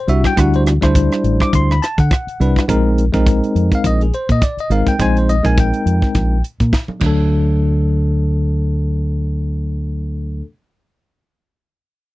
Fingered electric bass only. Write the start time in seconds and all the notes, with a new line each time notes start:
0.08 C2
0.37 D2
0.82 D2
1.24 A1
1.41 muted fingered electric bass stroke
1.53 D2
1.98 D3
2.27 muted fingered electric bass stroke
2.40 C2
2.69 A#1
3.14 A#1
3.55 F2
3.84 A#1
4.29 A#2
4.57 muted fingered electric bass stroke
4.70 G#1
4.99 A#1
5.45 A#1
5.86 F2
6.02 muted fingered electric bass stroke
6.15 A#1
6.60 A#2
6.88 muted fingered electric bass stroke
7.02 D2